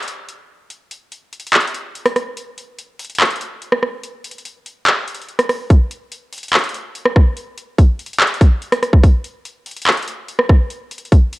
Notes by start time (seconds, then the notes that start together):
0.03 closed hi-hat
0.08 closed hi-hat
0.29 closed hi-hat
0.70 closed hi-hat
0.91 closed hi-hat
1.12 closed hi-hat
1.33 closed hi-hat
1.40 closed hi-hat
1.47 closed hi-hat
1.53 clap, closed hi-hat
1.60 closed hi-hat
1.67 closed hi-hat
1.74 closed hi-hat
1.95 closed hi-hat
2.06 cross-stick, closed hi-hat
2.16 cross-stick, closed hi-hat
2.37 closed hi-hat
2.58 closed hi-hat
2.79 closed hi-hat
2.99 closed hi-hat, open hi-hat
3.05 closed hi-hat
3.10 closed hi-hat
3.15 closed hi-hat
3.20 clap, closed hi-hat
3.25 closed hi-hat
3.31 closed hi-hat
3.36 closed hi-hat
3.41 closed hi-hat
3.62 closed hi-hat
3.72 cross-stick
3.83 cross-stick
4.03 closed hi-hat
4.24 closed hi-hat
4.31 closed hi-hat
4.38 closed hi-hat
4.45 closed hi-hat
4.66 closed hi-hat
4.87 clap, closed hi-hat
5.08 closed hi-hat
5.15 closed hi-hat
5.22 closed hi-hat
5.29 closed hi-hat
5.39 cross-stick, closed hi-hat
5.49 cross-stick, open hi-hat
5.70 kick, closed hi-hat
5.91 closed hi-hat
6.12 closed hi-hat
6.33 closed hi-hat, open hi-hat
6.38 closed hi-hat
6.43 closed hi-hat
6.48 closed hi-hat
6.53 clap, closed hi-hat
6.59 closed hi-hat
6.64 closed hi-hat
6.69 closed hi-hat
6.74 closed hi-hat
6.95 closed hi-hat
7.05 cross-stick
7.16 kick, cross-stick
7.37 closed hi-hat
7.58 closed hi-hat
7.79 kick, closed hi-hat
7.99 closed hi-hat
8.06 closed hi-hat
8.13 closed hi-hat
8.20 clap, closed hi-hat
8.27 closed hi-hat
8.34 closed hi-hat
8.41 kick, closed hi-hat
8.62 closed hi-hat
8.72 cross-stick, closed hi-hat
8.83 cross-stick, closed hi-hat
8.93 kick
9.04 kick, closed hi-hat
9.24 closed hi-hat
9.45 closed hi-hat
9.66 closed hi-hat, open hi-hat
9.71 closed hi-hat
9.76 closed hi-hat
9.82 closed hi-hat
9.87 clap
9.92 closed hi-hat
9.97 closed hi-hat
10.02 closed hi-hat
10.08 closed hi-hat
10.28 closed hi-hat
10.39 cross-stick
10.49 kick, cross-stick
10.70 closed hi-hat
10.91 closed hi-hat
10.98 closed hi-hat
11.05 closed hi-hat
11.12 kick, closed hi-hat
11.33 closed hi-hat